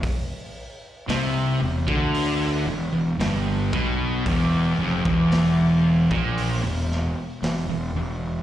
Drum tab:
HH |o---o---o---o---|o---o---o---o---|
SD |----o-------o---|----o-----o-o---|
BD |o------o------o-|o--o---o--------|